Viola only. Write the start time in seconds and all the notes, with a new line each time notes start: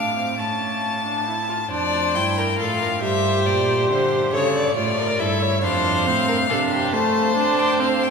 Already playing: D4
0.17 C4
0.39 C#4
1.05 D4
1.27 E4
1.49 F4
1.71 D4
2.16 E4
2.59 F4
3.03 G4
4.33 A4
4.77 F4
5.19 E4
5.63 D4
6.07 C4
6.50 D4
6.93 A3
7.36 D4
7.80 C4